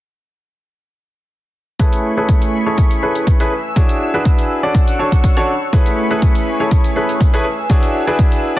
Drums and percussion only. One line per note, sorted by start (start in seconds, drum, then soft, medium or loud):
1.79 kick loud
1.79 closed hi-hat medium
1.92 closed hi-hat soft
2.29 kick loud
2.29 closed hi-hat medium
2.42 closed hi-hat soft
2.78 kick loud
2.78 closed hi-hat medium
2.91 closed hi-hat soft
3.15 closed hi-hat soft
3.27 kick loud
3.27 closed hi-hat medium
3.40 closed hi-hat soft
3.76 kick loud
3.76 closed hi-hat medium
3.89 closed hi-hat soft
4.25 kick loud
4.25 closed hi-hat medium
4.38 closed hi-hat soft
4.75 kick loud
4.75 closed hi-hat medium
4.88 closed hi-hat soft
5.12 kick medium
5.12 closed hi-hat soft
5.24 kick loud
5.24 closed hi-hat medium
5.37 closed hi-hat soft
5.73 kick loud
5.73 closed hi-hat medium
5.86 closed hi-hat soft
6.22 kick loud
6.22 closed hi-hat medium
6.35 closed hi-hat soft
6.71 kick loud
6.71 closed hi-hat medium
6.84 closed hi-hat soft
7.09 closed hi-hat soft
7.21 kick loud
7.21 closed hi-hat medium
7.34 closed hi-hat soft
7.70 kick loud
7.70 closed hi-hat medium
7.83 closed hi-hat soft
8.19 kick loud
8.19 closed hi-hat medium
8.32 closed hi-hat soft